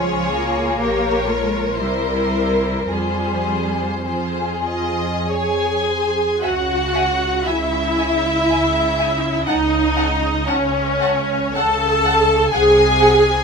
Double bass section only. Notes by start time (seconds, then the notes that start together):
Already playing: C#2
0.80 A#1
1.78 C2
2.89 F2
6.43 C#2
7.46 C#2
8.49 C#2
9.48 C#2
10.48 C#2
11.56 C#2
12.54 C2